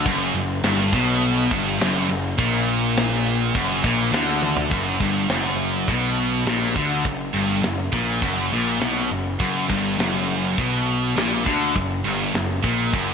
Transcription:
0.06 picked electric bass F#1, distorted electric guitar F#2, kick, ride
0.34 picked electric bass F#1, distorted electric guitar F#2, ride
0.63 picked electric bass G1, distorted electric guitar G2, snare, ride
0.93 picked electric bass B1, distorted electric guitar B2, kick, ride
1.22 ride
1.51 picked electric bass G1, distorted electric guitar G2, kick, ride
1.81 picked electric bass F#1, distorted electric guitar F#2, snare, ride
2.09 picked electric bass F#1, distorted electric guitar F#2, ride
2.38 picked electric bass A#1, distorted electric guitar A#2, kick, ride
2.68 ride
2.97 snare, ride
3.26 ride
3.55 picked electric bass F#1, distorted electric guitar F#2, kick, ride
3.84 picked electric bass A#1, distorted electric guitar A#2, kick, ride
4.12 picked electric bass D2, distorted electric guitar D3, snare, ride
4.42 high tom
4.57 floor tom
4.71 picked electric bass F#1, distorted electric guitar F#2, kick, open hi-hat
5.00 picked electric bass G1, distorted electric guitar G2, kick, open hi-hat
5.29 picked electric bass F#1, distorted electric guitar F#2, snare, open hi-hat
5.59 open hi-hat
5.87 picked electric bass B1, distorted electric guitar B2, kick, open hi-hat
6.17 open hi-hat
6.47 picked electric bass A#1, distorted electric guitar A#2, snare, open hi-hat
6.76 picked electric bass D2, distorted electric guitar D3, kick, open hi-hat
7.04 picked electric bass F#1, distorted electric guitar F#2, kick, open hi-hat
7.33 picked electric bass G1, distorted electric guitar G2, open hi-hat
7.62 picked electric bass F#1, distorted electric guitar F#2, snare, open hi-hat
7.92 picked electric bass A#1, distorted electric guitar A#2, kick, open hi-hat
8.21 picked electric bass F#1, distorted electric guitar F#2, kick, open hi-hat
8.52 picked electric bass A#1, distorted electric guitar A#2, open hi-hat
8.81 picked electric bass B1, distorted electric guitar B2, snare, open hi-hat
9.10 picked electric bass F#1, distorted electric guitar F#2, open hi-hat
9.40 picked electric bass F#1, distorted electric guitar F#2, kick, open hi-hat
9.69 picked electric bass G1, distorted electric guitar G2, kick, open hi-hat
9.98 picked electric bass F#1, distorted electric guitar F#2, snare, open hi-hat
10.29 open hi-hat
10.57 picked electric bass B1, distorted electric guitar B2, kick, open hi-hat
10.88 open hi-hat
11.16 picked electric bass A#1, distorted electric guitar A#2, snare, open hi-hat
11.46 picked electric bass D2, distorted electric guitar D3, kick, open hi-hat
11.76 picked electric bass F#1, distorted electric guitar F#2, kick, open hi-hat
12.05 picked electric bass G1, distorted electric guitar G2, open hi-hat
12.34 picked electric bass F#1, distorted electric guitar F#2, snare, open hi-hat
12.63 picked electric bass A#1, distorted electric guitar A#2, kick, open hi-hat
12.93 picked electric bass F#1, distorted electric guitar F#2, kick, open hi-hat

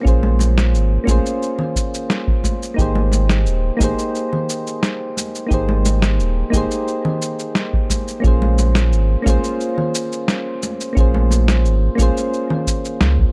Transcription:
Already playing: synth keys C#4 F4 G#4 C5
0.00 synth keys A#3 C#4
0.05 sub bass A#1, synth keys F4 G#4 C5, kick, cabasa
0.23 high conga
0.39 high conga, cabasa
0.58 snare, cabasa
0.74 sub bass G#1, cabasa
1.04 sub bass A#1, synth keys A#3 C#4 F4, kick, high conga
1.08 synth keys G#4 C5, cabasa
1.26 cabasa
1.43 cabasa
1.59 low conga
1.76 kick, cabasa
1.94 cabasa
2.10 snare, cabasa
2.28 kick
2.44 kick, high conga, cabasa
2.63 cabasa
2.74 sub bass G#1, synth keys A#3 D#4 G4
2.78 synth keys G#4 C5, kick, cabasa
2.95 high conga
3.12 high conga, cabasa
3.29 snare, cabasa
3.46 sub bass D#1, cabasa
3.77 sub bass G#1, synth keys A#3 D#4 G4, kick, high conga
3.81 synth keys G#4 C5, cabasa
3.99 cabasa
4.15 cabasa
4.33 low conga
4.49 cabasa
4.67 cabasa
4.83 snare, cabasa
5.17 high conga, cabasa
5.35 cabasa
5.47 synth keys A#3 D#4 G4
5.51 sub bass G#1, synth keys G#4 C5, kick, cabasa
5.69 high conga
5.85 high conga, cabasa
6.02 snare, cabasa
6.19 sub bass D#1, cabasa
6.50 sub bass G#1, synth keys A#3 D#4 G4, kick, high conga, cabasa
6.56 synth keys G#4 C5
6.71 cabasa
6.88 cabasa
7.05 low conga
7.22 cabasa
7.39 cabasa
7.55 snare, cabasa
7.73 kick
7.90 kick, high conga, cabasa
8.08 cabasa
8.20 sub bass A#1, synth keys A#3 C#4 F4
8.24 synth keys G#4 C5, kick, cabasa
8.42 high conga
8.58 high conga, cabasa
8.75 snare, cabasa
8.91 sub bass G#1, cabasa
9.22 synth keys A#3 C#4 F4, high conga
9.26 sub bass A#1, synth keys G#4 C5, kick, cabasa
9.44 cabasa
9.61 cabasa
9.78 low conga
9.95 cabasa
10.12 cabasa
10.28 snare, cabasa
10.63 high conga, cabasa
10.81 cabasa
10.93 sub bass A#1, synth keys A#3 C#4 F4, kick
10.97 synth keys G#4 C5, cabasa
11.14 high conga
11.31 high conga, cabasa
11.48 snare, cabasa
11.64 sub bass G#1, cabasa
11.95 sub bass A#1, synth keys A#3 C#4 F4, kick, high conga
11.99 synth keys G#4 C5, cabasa
12.17 cabasa
12.34 cabasa
12.50 low conga
12.67 kick, cabasa
12.85 cabasa
13.01 sub bass C#2, snare, cabasa
13.19 kick

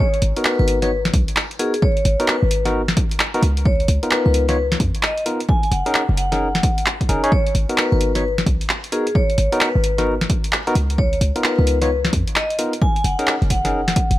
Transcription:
0.00 vibraphone C#5
0.14 closed hi-hat
0.22 808-style bass G#1, open hi-hat
0.36 tine electric piano B3 D#4 F#4 A#4, closed hi-hat
0.45 vibraphone B4, clap
0.59 808-style bass G#1, vibraphone B4
0.68 open hi-hat
0.82 tine electric piano B3 D#4 F#4 C#5, vibraphone B4, snare, closed hi-hat
1.05 snare
1.14 808-style bass B1, kick, open hi-hat
1.28 closed hi-hat
1.36 clap
1.51 closed hi-hat
1.59 tine electric piano B3 D#4 F#4 A#4, vibraphone G#4, open hi-hat
1.74 closed hi-hat
1.82 vibraphone C#5, kick
1.97 closed hi-hat
2.05 808-style bass G#1, open hi-hat
2.20 tine electric piano B3 D#4 F#4 A#4, closed hi-hat
2.28 vibraphone B4, clap
2.43 808-style bass G#1
2.51 open hi-hat
2.65 tine electric piano B3 D#4 F#4 A#4, snare, closed hi-hat
2.88 snare
2.97 kick, open hi-hat
3.11 closed hi-hat
3.20 clap
3.34 tine electric piano B3 D#4 F#4 A#4, closed hi-hat
3.43 808-style bass C#2, open hi-hat
3.57 closed hi-hat
3.65 vibraphone C#5, kick
3.80 closed hi-hat
3.88 808-style bass C#2, open hi-hat
4.03 tine electric piano B3 D#4 F4 A#4, closed hi-hat
4.11 vibraphone B4, clap
4.26 808-style bass C#2, vibraphone B4
4.34 open hi-hat
4.49 tine electric piano B3 D#4 F4 C#5, vibraphone B4, snare, closed hi-hat
4.72 snare
4.80 808-style bass F2, kick, open hi-hat
4.95 closed hi-hat
5.03 vibraphone D#5, clap
5.17 closed hi-hat
5.26 tine electric piano B3 D#4 F4 A#4, open hi-hat
5.40 closed hi-hat
5.49 vibraphone G#5, kick
5.63 vibraphone G#5, closed hi-hat
5.71 808-style bass F#1, vibraphone F#5, open hi-hat
5.86 tine electric piano C#4 D#4 G#4 A#4, vibraphone F#5, closed hi-hat
5.95 clap
6.09 808-style bass F#1
6.17 vibraphone F#5, open hi-hat
6.32 tine electric piano C#4 D#4 G#4 A#4, snare, closed hi-hat
6.55 snare
6.63 kick, open hi-hat
6.78 closed hi-hat
6.86 clap
7.01 kick, closed hi-hat
7.09 808-style bass F#1, tine electric piano C#4 D#4 G#4 A#4, open hi-hat
7.24 tine electric piano C#4 D#4 G#4 C#5, closed hi-hat
7.32 vibraphone C#5, kick
7.47 closed hi-hat
7.55 808-style bass G#1, open hi-hat
7.69 tine electric piano B3 D#4 F#4 A#4, closed hi-hat
7.78 vibraphone B4, clap
7.92 808-style bass G#1, vibraphone B4
8.01 open hi-hat
8.15 tine electric piano B3 D#4 F#4 C#5, vibraphone B4, snare, closed hi-hat
8.38 snare
8.46 808-style bass B1, kick, open hi-hat
8.61 closed hi-hat
8.69 clap
8.84 closed hi-hat
8.92 tine electric piano B3 D#4 F#4 A#4, vibraphone G#4, open hi-hat
9.07 closed hi-hat
9.15 vibraphone C#5, kick
9.30 closed hi-hat
9.38 808-style bass G#1, open hi-hat
9.52 tine electric piano B3 D#4 F#4 A#4, closed hi-hat
9.61 vibraphone B4, clap
9.75 808-style bass G#1
9.84 open hi-hat
9.98 tine electric piano B3 D#4 F#4 A#4, snare, closed hi-hat
10.21 snare
10.30 kick, open hi-hat
10.44 closed hi-hat
10.52 clap
10.67 tine electric piano B3 D#4 F#4 A#4, closed hi-hat
10.75 808-style bass C#2, open hi-hat
10.90 closed hi-hat
10.98 vibraphone C#5, kick
11.13 closed hi-hat
11.21 808-style bass C#2, open hi-hat
11.36 tine electric piano B3 D#4 F4 A#4, closed hi-hat
11.44 vibraphone B4, clap
11.59 808-style bass C#2, vibraphone B4
11.67 open hi-hat
11.82 tine electric piano B3 D#4 F4 C#5, vibraphone B4, snare, closed hi-hat
12.05 snare
12.13 808-style bass F2, kick, open hi-hat
12.27 closed hi-hat
12.36 vibraphone D#5, clap
12.50 closed hi-hat
12.59 tine electric piano B3 D#4 F4 A#4, open hi-hat
12.73 closed hi-hat
12.82 vibraphone G#5, kick
12.96 vibraphone G#5, closed hi-hat
13.04 808-style bass F#1, vibraphone F#5, open hi-hat
13.19 tine electric piano C#4 D#4 G#4 A#4, vibraphone F#5, closed hi-hat
13.27 clap
13.42 808-style bass F#1, closed hi-hat
13.50 vibraphone F#5, kick, open hi-hat
13.65 tine electric piano C#4 D#4 G#4 A#4, snare, closed hi-hat
13.88 snare, open hi-hat
13.96 kick, open hi-hat
14.11 808-style bass F#1, closed hi-hat

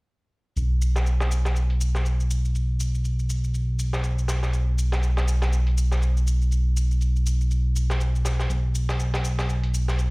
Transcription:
0.56 analog synth bass B1, shaker
0.81 shaker
0.96 snare, shaker
1.06 shaker
1.20 snare, shaker
1.31 shaker
1.45 snare, shaker
1.55 shaker
1.70 closed hi-hat
1.80 shaker
1.95 snare, shaker
2.05 shaker
2.20 shaker
2.30 shaker
2.45 shaker
2.55 shaker
2.79 shaker
2.95 shaker
3.04 shaker
3.19 shaker
3.29 shaker
3.44 shaker
3.54 shaker
3.79 shaker
3.93 snare, shaker
4.03 shaker
4.19 shaker
4.28 snare, shaker
4.43 snare, shaker
4.53 shaker
4.78 shaker
4.92 snare, shaker
5.03 shaker
5.17 snare, shaker
5.27 shaker
5.42 snare, shaker
5.52 shaker
5.67 closed hi-hat
5.77 shaker
5.92 snare, shaker
6.02 shaker
6.17 shaker
6.27 shaker
6.42 shaker
6.51 shaker
6.76 shaker
6.91 shaker
7.01 shaker
7.16 shaker
7.26 shaker
7.41 shaker
7.51 shaker
7.75 shaker
7.90 snare, shaker
8.00 shaker
8.15 shaker
8.25 snare, shaker
8.39 snare, shaker
8.50 analog synth bass B1, shaker
8.74 shaker
8.89 snare, shaker
8.99 shaker
9.14 snare, shaker
9.24 shaker
9.39 snare, shaker
9.49 shaker
9.64 closed hi-hat
9.74 shaker
9.88 snare, shaker
9.98 shaker

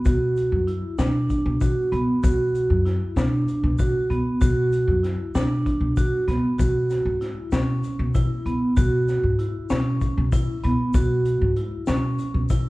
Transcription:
0.05 upright bass B2, vibraphone F#4, kick, closed hi-hat, shaker
0.36 closed hi-hat, shaker
0.52 upright bass F#2
0.67 vibraphone E4, closed hi-hat
0.99 upright bass B2, vibraphone D4, snare, closed hi-hat, shaker
1.30 kick, closed hi-hat, shaker
1.46 upright bass B2
1.61 vibraphone F#4, kick, closed hi-hat, shaker
1.92 upright bass B2, vibraphone B3, closed hi-hat
2.23 upright bass B2, vibraphone F#4, kick, closed hi-hat, shaker
2.55 closed hi-hat, shaker
2.70 upright bass F#2
2.86 vibraphone E4, snare, closed hi-hat
3.16 upright bass B2, vibraphone D4, snare, closed hi-hat, shaker
3.48 closed hi-hat, shaker
3.63 upright bass B2
3.79 vibraphone F#4, kick, closed hi-hat, shaker
4.10 upright bass B2, vibraphone B3, closed hi-hat
4.41 upright bass B2, vibraphone F#4, kick, closed hi-hat, shaker
4.72 closed hi-hat, shaker
4.88 upright bass F#2
5.03 vibraphone E4, snare, closed hi-hat
5.35 upright bass B2, vibraphone D4, snare, closed hi-hat, shaker
5.66 kick, closed hi-hat
5.81 upright bass B2
5.97 vibraphone F#4, kick, closed hi-hat, shaker
6.28 upright bass B2, vibraphone B3, snare, closed hi-hat
6.59 upright bass B2, vibraphone F#4, kick, closed hi-hat, shaker
6.90 snare, closed hi-hat, shaker
7.05 upright bass G#2
7.21 vibraphone E4, snare, closed hi-hat
7.52 upright bass B2, vibraphone C#4, snare, closed hi-hat, shaker
7.83 closed hi-hat, shaker
7.99 upright bass B2
8.15 vibraphone E4, kick, closed hi-hat, shaker
8.46 upright bass B2, vibraphone B3, closed hi-hat
8.77 upright bass B2, vibraphone F#4, kick, closed hi-hat, shaker
9.08 snare, closed hi-hat, shaker
9.24 upright bass G#2
9.39 vibraphone E4, closed hi-hat
9.70 upright bass B2, vibraphone C#4, snare, closed hi-hat, shaker
10.01 kick, closed hi-hat, shaker
10.18 upright bass B2
10.32 vibraphone E4, kick, closed hi-hat, shaker
10.63 upright bass B2, vibraphone B3, closed hi-hat
10.94 upright bass B2, vibraphone F#4, kick, closed hi-hat, shaker
11.25 closed hi-hat, shaker
11.41 upright bass G#2
11.56 vibraphone E4, closed hi-hat
11.87 upright bass B2, vibraphone C#4, snare, closed hi-hat, shaker
12.19 closed hi-hat, shaker
12.34 upright bass B2
12.49 vibraphone E4, kick, closed hi-hat, shaker

